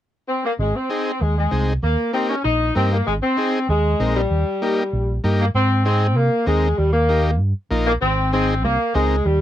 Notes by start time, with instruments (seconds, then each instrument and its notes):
0.29 saxophone section C4
0.45 saxophone section A#3
0.59 fingered electric bass G#1, saxophone section G#3
0.76 saxophone section C4
0.90 transistor combo organ C4 D#4 G#4
1.21 fingered electric bass D#2, saxophone section G#3
1.38 saxophone section G#3
1.51 fingered electric bass C2, transistor combo organ C4 D#4 G#4
1.83 fingered electric bass D#2, saxophone section A#3
2.13 transistor combo organ A#3 D#4 G4, saxophone section C4
2.30 saxophone section C#4
2.44 fingered electric bass A#1, saxophone section D#4
2.75 fingered electric bass G2, transistor combo organ A#3 D#4 G4, saxophone section C4
2.92 saxophone section A#3
3.07 fingered electric bass G#1, saxophone section G#3
3.23 saxophone section C4
3.37 transistor combo organ C4 D#4 G#4
3.69 fingered electric bass D#2, saxophone section G#3
4.00 fingered electric bass A#1, transistor combo organ C4 D#4 A#4
4.16 saxophone section G3
4.30 fingered electric bass D#2
4.62 transistor combo organ A#3 D#4 G4
4.93 fingered electric bass A#1
5.24 fingered electric bass G2, transistor combo organ A#3 D#4 G4
5.40 saxophone section A#3
5.54 fingered electric bass G#2, saxophone section C4
5.85 transistor combo organ C4 D#4 G#4, saxophone section C4
6.16 fingered electric bass C3, saxophone section A#3
6.46 fingered electric bass D#2, saxophone section G#3, transistor combo organ C4 D#4 A#4
6.78 fingered electric bass D#2, saxophone section G3
6.93 saxophone section A#3
7.09 transistor combo organ A#3 D#4 G4
7.40 fingered electric bass G2
7.71 fingered electric bass A#1, transistor combo organ A#3 D#4 F4
7.87 saxophone section A#3
8.02 fingered electric bass G#1, saxophone section C4
8.33 transistor combo organ C4 D#4 G#4, saxophone section C4
8.65 fingered electric bass C2, saxophone section A#3
8.94 fingered electric bass C#2, saxophone section G#3, transistor combo organ C4 D#4 A#4
9.25 fingered electric bass D#2, saxophone section G3